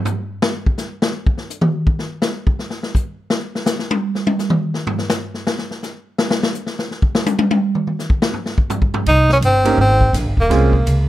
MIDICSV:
0, 0, Header, 1, 5, 480
1, 0, Start_track
1, 0, Tempo, 360144
1, 564, Time_signature, 4, 2, 24, 8
1, 14775, End_track
2, 0, Start_track
2, 0, Title_t, "Grand piano"
2, 0, Program_c, 0, 0
2, 12855, Note_on_c, 0, 58, 65
2, 12864, Note_on_c, 0, 61, 60
2, 12868, Note_on_c, 0, 63, 58
2, 12873, Note_on_c, 0, 67, 53
2, 12874, Note_on_c, 0, 70, 71
2, 13016, Note_off_c, 0, 58, 0
2, 13020, Note_off_c, 0, 61, 0
2, 13022, Note_off_c, 0, 63, 0
2, 13024, Note_off_c, 0, 67, 0
2, 13025, Note_off_c, 0, 70, 0
2, 13990, Note_on_c, 0, 56, 62
2, 13997, Note_on_c, 0, 60, 55
2, 13998, Note_on_c, 0, 61, 52
2, 14003, Note_on_c, 0, 65, 59
2, 14013, Note_on_c, 0, 68, 66
2, 14269, Note_off_c, 0, 56, 0
2, 14273, Note_off_c, 0, 60, 0
2, 14273, Note_off_c, 0, 61, 0
2, 14275, Note_off_c, 0, 65, 0
2, 14280, Note_off_c, 0, 68, 0
2, 14775, End_track
3, 0, Start_track
3, 0, Title_t, "Tenor saxophone"
3, 0, Program_c, 1, 66
3, 12102, Note_on_c, 1, 63, 100
3, 12373, Note_off_c, 1, 63, 0
3, 12432, Note_on_c, 1, 61, 90
3, 12499, Note_off_c, 1, 61, 0
3, 12595, Note_on_c, 1, 60, 99
3, 13023, Note_off_c, 1, 60, 0
3, 13070, Note_on_c, 1, 60, 92
3, 13501, Note_off_c, 1, 60, 0
3, 13861, Note_on_c, 1, 58, 85
3, 14751, Note_off_c, 1, 58, 0
3, 14775, End_track
4, 0, Start_track
4, 0, Title_t, "Upright bass"
4, 0, Program_c, 2, 32
4, 12077, Note_on_c, 2, 36, 76
4, 12534, Note_off_c, 2, 36, 0
4, 12542, Note_on_c, 2, 31, 89
4, 13015, Note_off_c, 2, 31, 0
4, 13031, Note_on_c, 2, 32, 89
4, 13495, Note_off_c, 2, 32, 0
4, 13503, Note_on_c, 2, 34, 89
4, 13670, Note_off_c, 2, 34, 0
4, 13670, Note_on_c, 2, 31, 63
4, 13820, Note_off_c, 2, 31, 0
4, 13828, Note_on_c, 2, 27, 67
4, 13982, Note_off_c, 2, 27, 0
4, 13995, Note_on_c, 2, 36, 80
4, 14463, Note_off_c, 2, 36, 0
4, 14478, Note_on_c, 2, 37, 96
4, 14775, Note_off_c, 2, 37, 0
4, 14775, End_track
5, 0, Start_track
5, 0, Title_t, "Drums"
5, 71, Note_on_c, 9, 43, 93
5, 73, Note_on_c, 9, 44, 59
5, 205, Note_off_c, 9, 43, 0
5, 206, Note_off_c, 9, 44, 0
5, 564, Note_on_c, 9, 38, 110
5, 697, Note_off_c, 9, 38, 0
5, 886, Note_on_c, 9, 36, 80
5, 1019, Note_off_c, 9, 36, 0
5, 1037, Note_on_c, 9, 38, 51
5, 1039, Note_on_c, 9, 44, 58
5, 1170, Note_off_c, 9, 38, 0
5, 1172, Note_off_c, 9, 44, 0
5, 1360, Note_on_c, 9, 38, 107
5, 1493, Note_off_c, 9, 38, 0
5, 1686, Note_on_c, 9, 36, 84
5, 1819, Note_off_c, 9, 36, 0
5, 1833, Note_on_c, 9, 38, 38
5, 1966, Note_off_c, 9, 38, 0
5, 1999, Note_on_c, 9, 44, 60
5, 2133, Note_off_c, 9, 44, 0
5, 2151, Note_on_c, 9, 47, 107
5, 2284, Note_off_c, 9, 47, 0
5, 2489, Note_on_c, 9, 36, 82
5, 2622, Note_off_c, 9, 36, 0
5, 2652, Note_on_c, 9, 38, 44
5, 2785, Note_off_c, 9, 38, 0
5, 2956, Note_on_c, 9, 38, 102
5, 2957, Note_on_c, 9, 44, 58
5, 3089, Note_off_c, 9, 38, 0
5, 3091, Note_off_c, 9, 44, 0
5, 3288, Note_on_c, 9, 36, 83
5, 3421, Note_off_c, 9, 36, 0
5, 3453, Note_on_c, 9, 38, 39
5, 3586, Note_off_c, 9, 38, 0
5, 3603, Note_on_c, 9, 38, 52
5, 3737, Note_off_c, 9, 38, 0
5, 3772, Note_on_c, 9, 38, 49
5, 3905, Note_off_c, 9, 38, 0
5, 3929, Note_on_c, 9, 36, 75
5, 3930, Note_on_c, 9, 44, 61
5, 4062, Note_off_c, 9, 36, 0
5, 4063, Note_off_c, 9, 44, 0
5, 4400, Note_on_c, 9, 38, 99
5, 4533, Note_off_c, 9, 38, 0
5, 4735, Note_on_c, 9, 38, 53
5, 4868, Note_off_c, 9, 38, 0
5, 4880, Note_on_c, 9, 38, 107
5, 4881, Note_on_c, 9, 44, 64
5, 5013, Note_off_c, 9, 38, 0
5, 5014, Note_off_c, 9, 44, 0
5, 5052, Note_on_c, 9, 38, 55
5, 5185, Note_off_c, 9, 38, 0
5, 5207, Note_on_c, 9, 48, 106
5, 5340, Note_off_c, 9, 48, 0
5, 5532, Note_on_c, 9, 38, 42
5, 5665, Note_off_c, 9, 38, 0
5, 5687, Note_on_c, 9, 48, 96
5, 5820, Note_off_c, 9, 48, 0
5, 5850, Note_on_c, 9, 38, 43
5, 5851, Note_on_c, 9, 44, 58
5, 5983, Note_off_c, 9, 38, 0
5, 5984, Note_off_c, 9, 44, 0
5, 5997, Note_on_c, 9, 47, 101
5, 6130, Note_off_c, 9, 47, 0
5, 6319, Note_on_c, 9, 38, 48
5, 6452, Note_off_c, 9, 38, 0
5, 6489, Note_on_c, 9, 43, 109
5, 6622, Note_off_c, 9, 43, 0
5, 6641, Note_on_c, 9, 38, 48
5, 6775, Note_off_c, 9, 38, 0
5, 6794, Note_on_c, 9, 38, 105
5, 6795, Note_on_c, 9, 44, 59
5, 6927, Note_off_c, 9, 38, 0
5, 6928, Note_off_c, 9, 44, 0
5, 7121, Note_on_c, 9, 38, 40
5, 7255, Note_off_c, 9, 38, 0
5, 7287, Note_on_c, 9, 38, 103
5, 7420, Note_off_c, 9, 38, 0
5, 7442, Note_on_c, 9, 38, 46
5, 7576, Note_off_c, 9, 38, 0
5, 7608, Note_on_c, 9, 38, 41
5, 7741, Note_off_c, 9, 38, 0
5, 7766, Note_on_c, 9, 38, 41
5, 7768, Note_on_c, 9, 44, 57
5, 7900, Note_off_c, 9, 38, 0
5, 7901, Note_off_c, 9, 44, 0
5, 8243, Note_on_c, 9, 38, 108
5, 8376, Note_off_c, 9, 38, 0
5, 8403, Note_on_c, 9, 38, 108
5, 8537, Note_off_c, 9, 38, 0
5, 8570, Note_on_c, 9, 38, 97
5, 8703, Note_off_c, 9, 38, 0
5, 8720, Note_on_c, 9, 44, 62
5, 8854, Note_off_c, 9, 44, 0
5, 8883, Note_on_c, 9, 38, 50
5, 9016, Note_off_c, 9, 38, 0
5, 9046, Note_on_c, 9, 38, 57
5, 9179, Note_off_c, 9, 38, 0
5, 9209, Note_on_c, 9, 38, 35
5, 9343, Note_off_c, 9, 38, 0
5, 9361, Note_on_c, 9, 36, 85
5, 9494, Note_off_c, 9, 36, 0
5, 9527, Note_on_c, 9, 38, 101
5, 9660, Note_off_c, 9, 38, 0
5, 9681, Note_on_c, 9, 48, 104
5, 9683, Note_on_c, 9, 44, 58
5, 9814, Note_off_c, 9, 48, 0
5, 9816, Note_off_c, 9, 44, 0
5, 9844, Note_on_c, 9, 48, 111
5, 9978, Note_off_c, 9, 48, 0
5, 10006, Note_on_c, 9, 48, 103
5, 10140, Note_off_c, 9, 48, 0
5, 10328, Note_on_c, 9, 47, 56
5, 10461, Note_off_c, 9, 47, 0
5, 10492, Note_on_c, 9, 47, 53
5, 10625, Note_off_c, 9, 47, 0
5, 10651, Note_on_c, 9, 38, 38
5, 10652, Note_on_c, 9, 44, 59
5, 10784, Note_off_c, 9, 38, 0
5, 10785, Note_off_c, 9, 44, 0
5, 10794, Note_on_c, 9, 36, 89
5, 10928, Note_off_c, 9, 36, 0
5, 10956, Note_on_c, 9, 38, 115
5, 11089, Note_off_c, 9, 38, 0
5, 11110, Note_on_c, 9, 43, 56
5, 11243, Note_off_c, 9, 43, 0
5, 11271, Note_on_c, 9, 38, 50
5, 11405, Note_off_c, 9, 38, 0
5, 11432, Note_on_c, 9, 36, 83
5, 11566, Note_off_c, 9, 36, 0
5, 11593, Note_on_c, 9, 43, 102
5, 11595, Note_on_c, 9, 44, 63
5, 11727, Note_off_c, 9, 43, 0
5, 11728, Note_off_c, 9, 44, 0
5, 11752, Note_on_c, 9, 36, 78
5, 11885, Note_off_c, 9, 36, 0
5, 11913, Note_on_c, 9, 43, 101
5, 12047, Note_off_c, 9, 43, 0
5, 12079, Note_on_c, 9, 51, 60
5, 12212, Note_off_c, 9, 51, 0
5, 12387, Note_on_c, 9, 38, 46
5, 12520, Note_off_c, 9, 38, 0
5, 12558, Note_on_c, 9, 44, 47
5, 12558, Note_on_c, 9, 51, 68
5, 12692, Note_off_c, 9, 44, 0
5, 12692, Note_off_c, 9, 51, 0
5, 12866, Note_on_c, 9, 51, 66
5, 12999, Note_off_c, 9, 51, 0
5, 13338, Note_on_c, 9, 36, 59
5, 13472, Note_off_c, 9, 36, 0
5, 13516, Note_on_c, 9, 38, 39
5, 13517, Note_on_c, 9, 44, 61
5, 13517, Note_on_c, 9, 51, 67
5, 13649, Note_off_c, 9, 38, 0
5, 13650, Note_off_c, 9, 44, 0
5, 13650, Note_off_c, 9, 51, 0
5, 13822, Note_on_c, 9, 36, 51
5, 13955, Note_off_c, 9, 36, 0
5, 14003, Note_on_c, 9, 38, 36
5, 14004, Note_on_c, 9, 51, 63
5, 14136, Note_off_c, 9, 38, 0
5, 14137, Note_off_c, 9, 51, 0
5, 14303, Note_on_c, 9, 36, 52
5, 14436, Note_off_c, 9, 36, 0
5, 14484, Note_on_c, 9, 44, 48
5, 14484, Note_on_c, 9, 51, 62
5, 14617, Note_off_c, 9, 44, 0
5, 14617, Note_off_c, 9, 51, 0
5, 14775, End_track
0, 0, End_of_file